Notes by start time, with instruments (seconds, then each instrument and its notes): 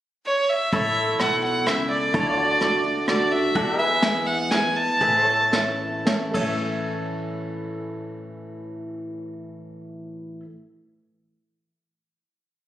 0.26 fiddle C#5
0.50 fiddle E5
0.72 upright bass A1, steel-string acoustic guitar A2, pedal steel guitar E4 A4 C#5, fiddle E5, kick, closed hi-hat
1.20 upright bass B1, steel-string acoustic guitar B2, fiddle F#5, cross-stick, closed hi-hat
1.43 fiddle F#5
1.66 upright bass C#2, steel-string acoustic guitar C#3, fiddle E5, cross-stick, closed hi-hat
1.90 fiddle D5
2.14 upright bass D2, steel-string acoustic guitar D3, pedal steel guitar E4 A4 C#5, kick, closed hi-hat
2.36 pedal steel guitar F#4 D5
2.61 upright bass C#2, steel-string acoustic guitar D3 A3 D4 F#4, cross-stick, closed hi-hat
2.84 steel-string acoustic guitar D4 F#4
3.08 upright bass D2, steel-string acoustic guitar D3 A3 D4 F#4, fiddle D5, cross-stick, closed hi-hat
3.31 steel-string acoustic guitar D4 F#4, fiddle E5
3.55 upright bass E2, steel-string acoustic guitar E2, pedal steel guitar F#4 A4 D5, kick, closed hi-hat
3.71 pedal steel guitar G4 A#4 D#5
3.78 pedal steel guitar G#4, fiddle E5
3.83 pedal steel guitar B4 E5
4.02 steel-string acoustic guitar E3 G#3 B3 E4, upright piano G#4 B4 E5, snare, closed hi-hat
4.26 fiddle F#5
4.51 steel-string acoustic guitar E3 G#3 B3 E4, upright piano G#4 B4 E5, fiddle G#5, snare, closed hi-hat
4.76 fiddle A5
5.01 upright bass A1, steel-string acoustic guitar A2, pedal steel guitar G#4 B4 E5, kick, closed hi-hat
5.20 pedal steel guitar A4
5.26 pedal steel guitar C#5
5.52 steel-string acoustic guitar E3 A3 C#4 E4, upright piano A4 C#5 E5, snare, closed hi-hat
6.06 steel-string acoustic guitar E3 A3 C#4 E4, upright piano A4 C#5 E5, snare, closed hi-hat
6.32 upright bass A1, steel-string acoustic guitar A2 E3 A3, upright piano A4 C#5, pedal steel guitar A4 C#5, kick, crash
6.36 steel-string acoustic guitar C#4 E4, pedal steel guitar E5, upright piano E5